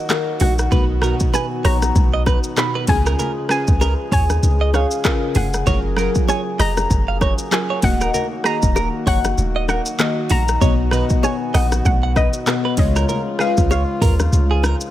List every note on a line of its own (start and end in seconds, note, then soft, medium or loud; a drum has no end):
0.00 0.09 D#3 medium
0.00 2.84 D#3 medium
0.00 0.68 F#3 medium
0.00 0.68 A#3 medium
0.00 0.10 D#4 medium
0.00 0.73 F4 medium
0.00 0.10 F#4 medium
0.00 2.84 F#4 medium
0.00 0.11 A#4 medium
0.00 0.37 D#5 medium
0.09 0.48 D#3 medium
0.09 0.48 D#4 medium
0.09 0.48 F#4 medium
0.09 0.49 A#4 medium
0.09 cross-stick loud
0.09 clap loud
0.09 high bongo medium
0.09 shaker medium
0.40 0.68 A#1 medium
0.40 0.53 F#4 medium
0.40 0.99 F#5 medium
0.40 open hi-hat medium
0.40 low bongo medium
0.40 low conga medium
0.40 shaker soft
0.59 cross-stick medium
0.59 shaker medium
0.70 1.14 B1 loud
0.70 0.92 B2 medium
0.70 2.86 F#3 medium
0.70 0.92 B3 medium
0.70 2.86 B3 medium
0.70 0.93 D#4 medium
0.70 0.93 F#4 medium
0.70 0.84 B4 loud
0.70 kick loud
0.70 low conga medium
0.70 shaker medium
1.01 1.79 B2 medium
1.01 1.79 B3 medium
1.01 1.79 D#4 medium
1.01 1.80 F#4 medium
1.01 1.15 A#4 medium
1.01 cross-stick loud
1.01 shaker medium
1.20 kick medium
1.20 shaker medium
1.34 1.45 B4 medium
1.34 1.48 G#5 loud
1.34 high bongo medium
1.34 low bongo medium
1.34 shaker medium
1.65 1.91 A#1 loud
1.65 1.76 C#5 medium
1.65 2.61 A#5 loud
1.65 cross-stick loud
1.65 open hi-hat medium
1.65 high bongo medium
1.65 shaker soft
1.82 cross-stick medium
1.82 high bongo soft
1.82 low bongo medium
1.82 shaker medium
1.95 2.38 B1 loud
1.95 kick loud
1.95 low conga medium
1.95 shaker medium
2.14 2.22 D#5 medium
2.26 2.38 B4 medium
2.26 kick medium
2.26 cross-stick loud
2.26 low bongo medium
2.26 shaker soft
2.44 shaker medium
2.56 2.88 B2 medium
2.56 2.88 B3 medium
2.56 2.89 D#4 medium
2.56 2.89 F#4 medium
2.56 2.72 B5 loud
2.56 cross-stick loud
2.56 clap loud
2.56 high bongo medium
2.56 shaker medium
2.75 2.84 B4 medium
2.87 3.15 C#2 loud
2.87 3.39 C#3 medium
2.87 7.79 C#3 medium
2.87 5.64 F3 medium
2.87 5.64 G#3 medium
2.87 3.40 C#4 medium
2.87 3.40 F4 medium
2.87 7.79 G#4 medium
2.87 3.40 G#4 medium
2.87 3.50 G#5 loud
2.87 kick loud
2.87 open hi-hat medium
2.87 low bongo medium
2.87 low conga medium
2.87 shaker soft
3.06 3.15 A#4 medium
3.06 cross-stick medium
3.06 shaker medium
3.19 3.31 A#4 loud
3.19 low conga medium
3.19 shaker medium
3.49 4.26 C#3 medium
3.49 4.27 C#4 medium
3.49 4.27 F4 medium
3.49 3.62 G#4 medium
3.49 4.27 B4 medium
3.49 4.12 G#5 loud
3.49 cross-stick loud
3.49 shaker medium
3.67 3.95 C#2 medium
3.67 kick medium
3.67 shaker medium
3.81 3.93 A#4 medium
3.81 high bongo medium
3.81 low bongo medium
3.81 shaker medium
4.12 4.39 D#2 medium
4.12 4.24 C#5 medium
4.12 4.70 G#5 loud
4.12 kick loud
4.12 mid tom loud
4.12 open hi-hat medium
4.12 high bongo medium
4.12 shaker medium
4.30 cross-stick medium
4.30 high bongo soft
4.30 low bongo medium
4.30 shaker medium
4.43 4.85 C#2 loud
4.43 low conga medium
4.43 shaker medium
4.61 4.70 D#5 medium
4.74 4.86 C#5 medium
4.74 5.38 F5 medium
4.74 cross-stick medium
4.74 low bongo medium
4.74 shaker soft
4.91 shaker medium
5.04 5.42 C#3 medium
5.04 5.43 C#4 medium
5.04 5.43 F4 medium
5.04 5.44 A#4 medium
5.04 kick medium
5.04 cross-stick loud
5.04 clap loud
5.04 high bongo medium
5.04 shaker medium
5.35 5.62 F1 medium
5.35 5.48 G#4 medium
5.35 5.94 F#5 medium
5.35 mid tom medium
5.35 open hi-hat medium
5.35 low bongo medium
5.35 low conga medium
5.35 shaker soft
5.54 cross-stick medium
5.54 shaker medium
5.66 6.09 F#1 loud
5.66 5.87 F#3 medium
5.66 12.74 F#3 medium
5.66 10.58 A#3 medium
5.66 5.87 C#4 medium
5.66 5.87 F4 medium
5.66 5.88 A#4 medium
5.66 5.79 C#5 loud
5.66 kick loud
5.66 low conga medium
5.66 shaker medium
5.96 6.74 F#3 medium
5.96 6.74 C#4 medium
5.96 6.74 F4 medium
5.96 6.10 A#4 medium
5.96 6.75 A#4 medium
5.96 cross-stick loud
5.96 shaker medium
6.15 kick medium
6.15 shaker medium
6.28 6.40 C#5 medium
6.28 6.58 G#5 loud
6.28 high bongo medium
6.28 low bongo medium
6.28 shaker medium
6.59 6.86 F1 loud
6.59 6.71 D#5 medium
6.59 7.55 A#5 loud
6.59 cross-stick loud
6.59 open hi-hat medium
6.59 high bongo medium
6.59 shaker medium
6.77 cross-stick medium
6.77 high bongo soft
6.77 low bongo medium
6.77 shaker medium
6.90 7.33 F#1 loud
6.90 kick loud
6.90 low conga medium
6.90 shaker medium
7.08 7.17 F5 medium
7.21 7.33 C#5 medium
7.21 kick loud
7.21 cross-stick medium
7.21 low bongo medium
7.21 shaker soft
7.38 shaker medium
7.51 7.83 F#3 medium
7.51 7.83 C#4 medium
7.51 7.83 F4 medium
7.51 7.84 A#4 medium
7.51 7.85 G#5 loud
7.51 cross-stick loud
7.51 clap loud
7.51 high bongo loud
7.51 shaker medium
7.70 7.79 C#5 medium
7.82 8.10 D#1 loud
7.82 8.34 D#3 medium
7.82 12.74 D#3 medium
7.82 8.34 A#3 medium
7.82 12.74 F#4 medium
7.82 8.35 F#4 medium
7.82 8.35 D#5 medium
7.82 8.47 F#5 loud
7.82 kick loud
7.82 open hi-hat medium
7.82 low bongo medium
7.82 low conga medium
7.82 shaker soft
8.01 8.10 A#4 medium
8.01 cross-stick medium
8.01 shaker medium
8.14 8.26 A#4 loud
8.14 low conga medium
8.14 shaker medium
8.44 9.21 D#3 medium
8.44 9.21 A#3 medium
8.44 9.22 F#4 medium
8.44 8.57 G#4 medium
8.44 9.22 D#5 medium
8.44 9.09 A#5 loud
8.44 cross-stick loud
8.44 shaker medium
8.62 8.90 D#1 medium
8.62 kick medium
8.62 shaker medium
8.76 8.88 A#4 medium
8.76 high bongo medium
8.76 low bongo medium
8.76 shaker medium
9.07 9.33 F#1 medium
9.07 9.19 C#5 medium
9.07 9.68 F#5 loud
9.07 kick loud
9.07 open hi-hat medium
9.07 high bongo medium
9.07 shaker medium
9.25 cross-stick medium
9.25 high bongo soft
9.25 low bongo medium
9.25 shaker medium
9.38 9.80 D#1 loud
9.38 low conga medium
9.38 shaker medium
9.56 9.64 D#5 medium
9.68 9.81 A#4 medium
9.68 10.33 F#5 loud
9.68 cross-stick loud
9.68 low bongo medium
9.68 shaker soft
9.86 shaker medium
9.98 10.37 D#3 medium
9.98 10.38 A#3 medium
9.98 10.38 F#4 medium
9.98 10.39 D#5 medium
9.98 cross-stick loud
9.98 clap loud
9.98 high bongo medium
9.98 shaker medium
10.30 10.57 A#1 medium
10.30 10.42 F#4 medium
10.30 11.20 A#5 loud
10.30 open hi-hat medium
10.30 low bongo medium
10.30 low conga medium
10.30 shaker medium
10.48 cross-stick medium
10.48 shaker medium
10.60 11.04 B1 loud
10.60 10.82 B2 medium
10.60 10.82 B3 medium
10.60 12.76 B3 medium
10.60 10.82 F#4 medium
10.60 10.73 C#5 loud
10.60 10.83 D#5 medium
10.60 kick medium
10.60 low conga medium
10.60 shaker medium
10.91 11.68 B2 medium
10.91 11.69 B3 medium
10.91 11.69 F#4 medium
10.91 11.04 B4 medium
10.91 11.70 D#5 medium
10.91 cross-stick loud
10.91 shaker medium
11.10 kick medium
11.10 shaker medium
11.23 11.35 C#5 medium
11.23 11.56 G#5 medium
11.23 high bongo medium
11.23 low bongo medium
11.23 shaker medium
11.54 11.81 A#1 loud
11.54 11.66 D#5 medium
11.54 11.84 F#5 medium
11.54 cross-stick loud
11.54 open hi-hat medium
11.54 high bongo medium
11.54 shaker medium
11.72 cross-stick medium
11.72 high bongo soft
11.72 low bongo medium
11.72 shaker medium
11.85 12.27 B1 loud
11.85 12.17 F#5 loud
11.85 kick loud
11.85 low conga medium
11.85 shaker medium
12.03 12.12 F#5 medium
12.16 12.28 B4 medium
12.16 12.74 D#5 medium
12.16 kick loud
12.16 cross-stick loud
12.16 low bongo medium
12.16 shaker soft
12.33 shaker medium
12.46 12.77 B2 medium
12.46 12.78 B3 medium
12.46 12.78 F#4 medium
12.46 12.79 B4 medium
12.46 cross-stick loud
12.46 clap loud
12.46 high bongo medium
12.46 shaker medium
12.65 12.74 B4 medium
12.77 13.05 C#2 loud
12.77 13.29 C#3 medium
12.77 14.91 C#3 medium
12.77 14.91 F3 medium
12.77 13.29 G#3 medium
12.77 14.91 G#3 medium
12.77 14.91 F4 medium
12.77 13.30 F4 medium
12.77 13.30 C#5 medium
12.77 13.36 D#5 medium
12.77 kick loud
12.77 open hi-hat medium
12.77 low bongo medium
12.77 low conga medium
12.77 shaker soft
12.96 13.05 A#4 medium
12.96 cross-stick medium
12.96 shaker medium
13.09 13.21 A#4 loud
13.09 low conga medium
13.09 shaker medium
13.39 14.16 C#3 medium
13.39 14.16 G#3 medium
13.39 13.48 D#4 medium
13.39 13.52 G#4 medium
13.39 14.17 B4 medium
13.39 13.69 F5 loud
13.39 cross-stick loud
13.39 shaker medium
13.47 14.20 F4 medium
13.57 13.85 C#2 medium
13.57 kick medium
13.57 shaker medium
13.71 13.83 C#5 medium
13.71 14.60 F5 medium
13.71 high bongo medium
13.71 low bongo medium
13.71 shaker medium
14.02 14.28 D#2 medium
14.02 14.14 A#4 medium
14.02 kick loud
14.02 mid tom loud
14.02 open hi-hat medium
14.02 high bongo medium
14.02 shaker medium
14.19 cross-stick medium
14.19 high bongo soft
14.19 low bongo medium
14.19 shaker medium
14.33 14.75 C#2 loud
14.33 low conga medium
14.33 shaker medium
14.51 14.64 G#4 medium
14.63 14.75 A#4 medium
14.63 cross-stick loud
14.63 low bongo medium
14.63 shaker soft
14.81 shaker medium